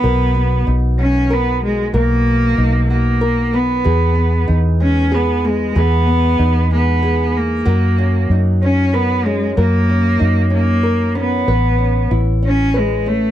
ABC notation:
X:1
M:6/8
L:1/8
Q:3/8=63
K:B
V:1 name="Nylon-string guitar"
[B,,A] B, D F, A2 | [B,,A]2 D F, A B, | [E,G] B, D G, G B, | [E,G] B, D G, G2 |
[F,A] C D C A C | [F,A] C D C A C | B C E C B C |]
V:2 name="Cello"
B,2 z C B, G, | A,3 A,2 B,- | B,2 z C B, G, | B,3 B,2 A,- |
A,2 z C B, G, | A,3 A,2 B,- | B,2 z C G, =A, |]
V:3 name="Fingered electric bass" clef=bass
B,,,2 B,,,4 | B,,,2 B,,,4 | E,,2 E,,4 | E,,2 E,,4 |
F,,2 F,,4 | F,,2 F,,4 | =A,,,2 A,,,4 |]